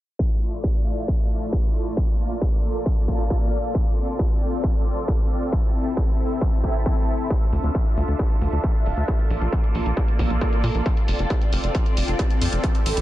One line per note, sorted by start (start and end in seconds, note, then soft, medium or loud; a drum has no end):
0.19 0.35 A3 medium
0.19 0.35 E4 medium
0.19 0.35 F4 medium
0.19 0.35 D5 medium
0.19 kick loud
0.42 0.57 A3 medium
0.42 0.57 E4 medium
0.42 0.57 F4 medium
0.42 0.57 D5 medium
0.64 0.72 A3 medium
0.64 0.72 E4 medium
0.64 0.72 F4 medium
0.64 0.72 D5 medium
0.64 kick loud
0.75 0.90 A3 medium
0.75 0.90 E4 medium
0.75 0.90 F4 medium
0.75 0.90 D5 medium
0.97 1.05 A3 medium
0.97 1.05 E4 medium
0.97 1.05 F4 medium
0.97 1.05 D5 medium
1.08 1.24 A3 medium
1.08 1.24 E4 medium
1.08 1.24 F4 medium
1.08 1.24 D5 medium
1.08 kick loud
1.30 1.46 A3 medium
1.30 1.46 E4 medium
1.30 1.46 F4 medium
1.30 1.46 D5 medium
1.53 1.60 A3 medium
1.53 1.60 E4 medium
1.53 1.60 F4 medium
1.53 1.60 D5 medium
1.53 kick loud
1.64 1.79 A3 medium
1.64 1.79 E4 medium
1.64 1.79 F4 medium
1.64 1.79 D5 medium
1.86 1.94 A3 medium
1.86 1.94 E4 medium
1.86 1.94 F4 medium
1.86 1.94 D5 medium
1.97 2.13 A#3 medium
1.97 2.13 F4 medium
1.97 2.13 A4 medium
1.97 2.13 D5 medium
1.97 kick loud
2.19 2.35 A#3 medium
2.19 2.35 F4 medium
2.19 2.35 A4 medium
2.19 2.35 D5 medium
2.41 2.49 A#3 medium
2.41 2.49 F4 medium
2.41 2.49 A4 medium
2.41 2.49 D5 medium
2.41 kick loud
2.53 2.68 A#3 medium
2.53 2.68 F4 medium
2.53 2.68 A4 medium
2.53 2.68 D5 medium
2.75 2.83 A#3 medium
2.75 2.83 F4 medium
2.75 2.83 A4 medium
2.75 2.83 D5 medium
2.86 3.02 A#3 medium
2.86 3.01 F4 medium
2.86 3.01 A4 medium
2.86 3.01 D5 medium
2.86 kick loud
3.08 3.24 A#3 medium
3.08 3.24 F4 medium
3.08 3.24 A4 medium
3.08 3.24 D5 medium
3.08 kick medium
3.30 3.38 A#3 medium
3.30 3.38 F4 medium
3.30 3.38 A4 medium
3.30 3.38 D5 medium
3.30 kick loud
3.41 3.57 A#3 medium
3.41 3.57 F4 medium
3.41 3.57 A4 medium
3.41 3.57 D5 medium
3.64 3.71 A#3 medium
3.64 3.71 F4 medium
3.64 3.71 A4 medium
3.64 3.71 D5 medium
3.75 3.90 C4 medium
3.75 3.90 F4 medium
3.75 3.90 A4 medium
3.75 3.90 D5 medium
3.75 kick loud
3.97 4.13 C4 medium
3.97 4.13 F4 medium
3.97 4.13 A4 medium
3.97 4.13 D5 medium
4.19 4.27 C4 medium
4.19 4.27 F4 medium
4.19 4.27 A4 medium
4.19 4.27 D5 medium
4.19 kick loud
4.30 4.46 C4 medium
4.30 4.46 F4 medium
4.30 4.46 A4 medium
4.30 4.46 D5 medium
4.52 4.60 C4 medium
4.52 4.60 F4 medium
4.52 4.60 A4 medium
4.52 4.60 D5 medium
4.64 4.79 C4 medium
4.64 4.79 F4 medium
4.64 4.79 A4 medium
4.64 4.79 D5 medium
4.64 kick loud
4.86 5.02 C4 medium
4.86 5.02 F4 medium
4.86 5.02 A4 medium
4.86 5.02 D5 medium
5.08 5.16 C4 medium
5.08 5.16 F4 medium
5.08 5.16 A4 medium
5.08 5.16 D5 medium
5.08 kick loud
5.19 5.35 C4 medium
5.19 5.35 F4 medium
5.19 5.35 A4 medium
5.19 5.35 D5 medium
5.41 5.49 C4 medium
5.41 5.49 F4 medium
5.41 5.49 A4 medium
5.41 5.49 D5 medium
5.52 5.68 C4 medium
5.52 5.68 E4 medium
5.52 5.68 A4 medium
5.52 5.68 E5 medium
5.52 kick loud
5.75 5.90 C4 medium
5.75 5.90 E4 medium
5.75 5.90 A4 medium
5.75 5.90 E5 medium
5.97 6.05 C4 medium
5.97 6.05 E4 medium
5.97 6.05 A4 medium
5.97 6.05 E5 medium
5.97 kick loud
6.08 6.24 C4 medium
6.08 6.24 E4 medium
6.08 6.24 A4 medium
6.08 6.24 E5 medium
6.30 6.38 C4 medium
6.30 6.38 E4 medium
6.30 6.38 A4 medium
6.30 6.38 E5 medium
6.41 6.57 C4 medium
6.41 6.57 E4 medium
6.41 6.57 A4 medium
6.41 6.57 E5 medium
6.41 kick loud
6.63 6.79 C4 medium
6.63 6.79 E4 medium
6.63 6.79 A4 medium
6.63 6.79 E5 medium
6.63 kick medium
6.86 6.94 C4 medium
6.86 6.94 E4 medium
6.86 6.94 A4 medium
6.86 6.94 E5 medium
6.86 kick loud
6.97 7.13 C4 medium
6.97 7.13 E4 medium
6.97 7.12 A4 medium
6.97 7.13 E5 medium
7.19 7.27 C4 medium
7.19 7.27 E4 medium
7.19 7.27 A4 medium
7.19 7.27 E5 medium
7.30 7.46 D4 medium
7.30 7.46 F4 medium
7.30 7.46 A4 medium
7.30 7.46 E5 medium
7.30 kick loud
7.30 closed hi-hat soft
7.42 closed hi-hat soft
7.52 7.60 D2 medium
7.52 7.68 D4 medium
7.52 7.68 F4 medium
7.52 7.68 A4 medium
7.52 7.68 E5 medium
7.52 open hi-hat loud
7.64 7.71 D2 medium
7.64 closed hi-hat soft
7.75 7.82 D4 medium
7.75 7.82 F4 medium
7.75 7.82 A4 medium
7.75 7.82 E5 medium
7.75 kick loud
7.75 closed hi-hat soft
7.86 8.01 D4 medium
7.86 8.01 F4 medium
7.86 8.01 A4 medium
7.86 8.01 E5 medium
7.86 closed hi-hat soft
7.97 8.04 D2 medium
7.97 open hi-hat loud
8.08 8.15 D2 medium
8.08 8.16 D4 medium
8.08 8.16 F4 medium
8.08 8.16 A4 medium
8.08 8.16 E5 medium
8.08 closed hi-hat soft
8.19 8.35 D4 medium
8.19 8.35 F4 medium
8.19 8.35 A4 medium
8.19 8.35 E5 medium
8.19 kick loud
8.19 closed hi-hat soft
8.30 closed hi-hat soft
8.41 8.48 D2 medium
8.41 8.57 D4 medium
8.41 8.57 F4 medium
8.41 8.57 A4 medium
8.41 8.57 E5 medium
8.41 open hi-hat loud
8.53 8.60 D2 medium
8.53 closed hi-hat soft
8.64 8.71 D4 medium
8.64 8.71 F4 medium
8.64 8.71 A4 medium
8.64 8.71 E5 medium
8.64 kick loud
8.64 closed hi-hat soft
8.75 8.90 D4 medium
8.75 8.90 F4 medium
8.75 8.90 A4 medium
8.75 8.90 E5 medium
8.75 closed hi-hat soft
8.86 8.93 D1 medium
8.86 open hi-hat loud
8.97 9.04 D2 medium
8.97 9.05 D4 medium
8.97 9.05 F4 medium
8.97 9.05 A4 medium
8.97 9.05 E5 medium
8.97 closed hi-hat soft
9.08 9.24 A#3 medium
9.08 9.24 F4 medium
9.08 9.24 A4 medium
9.08 9.24 D5 medium
9.08 kick loud
9.08 closed hi-hat soft
9.19 closed hi-hat soft
9.30 9.37 A#1 medium
9.30 9.46 A#3 medium
9.30 9.46 F4 medium
9.30 9.46 A4 medium
9.30 9.46 D5 medium
9.30 open hi-hat medium
9.41 9.48 A#1 medium
9.41 closed hi-hat soft
9.52 9.60 A#3 medium
9.52 9.60 F4 medium
9.52 9.60 A4 medium
9.52 9.60 D5 medium
9.52 kick loud
9.52 closed hi-hat soft
9.64 9.79 A#3 medium
9.64 9.79 F4 medium
9.64 9.79 A4 medium
9.64 9.79 D5 medium
9.64 closed hi-hat soft
9.75 9.82 A#1 medium
9.75 open hi-hat medium
9.86 9.93 A#1 medium
9.86 9.94 A#3 medium
9.86 9.94 F4 medium
9.86 9.94 A4 medium
9.86 9.94 D5 medium
9.86 closed hi-hat soft
9.97 10.13 A#3 medium
9.97 10.13 F4 medium
9.97 10.13 A4 medium
9.97 10.13 D5 medium
9.97 kick loud
9.97 closed hi-hat soft
10.08 closed hi-hat soft
10.19 10.26 A#1 loud
10.19 10.35 A#3 medium
10.19 10.35 F4 medium
10.19 10.35 A4 medium
10.19 10.35 D5 medium
10.19 kick medium
10.19 open hi-hat medium
10.30 10.37 A#1 medium
10.30 closed hi-hat soft
10.41 10.49 A#3 medium
10.41 10.49 F4 medium
10.41 10.49 A4 medium
10.41 10.49 D5 medium
10.41 kick loud
10.41 closed hi-hat soft
10.52 10.68 A#3 medium
10.52 10.68 F4 medium
10.52 10.68 A4 medium
10.52 10.68 D5 medium
10.52 closed hi-hat soft
10.64 10.71 A#2 medium
10.64 open hi-hat loud
10.75 10.82 A#1 medium
10.75 10.82 A#3 medium
10.75 10.82 F4 medium
10.75 10.82 A4 medium
10.75 10.82 D5 medium
10.75 closed hi-hat soft
10.86 11.01 C4 medium
10.86 11.01 F4 medium
10.86 11.01 A4 medium
10.86 11.01 D5 medium
10.86 kick loud
10.86 closed hi-hat soft
10.97 closed hi-hat soft
11.08 11.15 F1 medium
11.08 11.24 C4 medium
11.08 11.24 F4 medium
11.08 11.24 A4 medium
11.08 11.24 D5 medium
11.08 open hi-hat medium
11.19 11.26 F1 medium
11.19 closed hi-hat soft
11.30 11.38 C4 medium
11.30 11.38 F4 medium
11.30 11.38 A4 medium
11.30 11.38 D5 medium
11.30 kick loud
11.30 closed hi-hat medium
11.41 11.57 C4 medium
11.41 11.57 F4 medium
11.41 11.57 A4 medium
11.41 11.57 D5 medium
11.41 closed hi-hat soft
11.53 11.59 F1 medium
11.53 open hi-hat medium
11.63 11.71 F1 medium
11.63 11.71 C4 medium
11.63 11.71 F4 medium
11.63 11.71 A4 medium
11.63 11.71 D5 medium
11.63 closed hi-hat medium
11.75 11.90 C4 medium
11.75 11.90 F4 medium
11.75 11.90 A4 medium
11.75 11.90 D5 medium
11.75 kick loud
11.75 closed hi-hat medium
11.86 closed hi-hat soft
11.97 12.04 F1 medium
11.97 12.13 C4 medium
11.97 12.13 F4 medium
11.97 12.12 A4 medium
11.97 12.13 D5 medium
11.97 open hi-hat medium
12.08 12.15 F1 medium
12.08 closed hi-hat soft
12.19 12.27 C4 medium
12.19 12.27 F4 medium
12.19 12.27 A4 medium
12.19 12.27 D5 medium
12.19 kick loud
12.19 closed hi-hat medium
12.30 12.46 C4 medium
12.30 12.46 F4 medium
12.30 12.46 A4 medium
12.30 12.46 D5 medium
12.30 closed hi-hat soft
12.41 12.48 F2 medium
12.41 open hi-hat medium
12.52 12.59 F1 medium
12.52 12.60 C4 medium
12.52 12.60 F4 medium
12.52 12.60 A4 medium
12.52 12.60 D5 medium
12.52 closed hi-hat soft
12.63 12.79 C4 medium
12.63 12.79 E4 medium
12.63 12.79 A4 medium
12.63 12.79 E5 medium
12.63 kick loud
12.63 closed hi-hat medium
12.75 closed hi-hat soft
12.86 12.93 A1 medium
12.86 13.01 C4 medium
12.86 13.01 E4 medium
12.86 13.01 A4 medium
12.86 13.01 E5 medium
12.86 open hi-hat loud
12.97 13.01 A1 medium
12.97 closed hi-hat medium